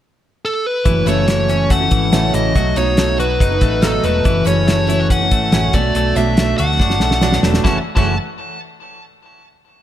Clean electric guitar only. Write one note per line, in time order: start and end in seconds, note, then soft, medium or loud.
0.86 1.27 E3 medium
1.07 1.70 A3 medium
1.28 1.90 E3 medium
1.50 2.60 C#4 medium
1.71 2.12 A3 medium
1.92 2.33 E3 medium
2.13 2.80 A3 medium
2.34 2.55 E3 medium
2.56 4.25 F#3 medium
2.77 3.39 D#4 medium
2.98 3.61 A3 medium
3.19 4.88 F#4 medium
3.40 3.82 D#4 medium
3.62 4.04 A3 medium
3.83 4.30 D#4 medium
4.05 4.67 A3 medium
4.25 5.78 E3 medium
4.46 5.09 C#4 medium
4.67 5.32 A3 medium
4.89 5.00 E4 medium
5.00 5.78 F#4 medium
5.10 5.51 C#4 medium
5.32 5.74 A3 medium
5.53 5.78 C#4 medium
5.74 5.96 A3 medium
5.96 6.38 A3 medium
6.17 6.79 D4 medium
6.38 7.01 A3 soft
6.59 7.66 F#4 medium
6.80 7.21 D4 medium
7.02 7.43 A3 soft
7.22 7.65 D4 medium
7.43 7.64 A3 medium
7.64 7.77 E3 medium
7.64 7.78 A3 medium
7.64 7.78 C#4 medium
7.64 7.78 F#4 medium
7.96 8.13 E3 medium
7.96 8.14 A3 medium
7.96 8.14 C#4 medium
7.96 8.15 F#4 medium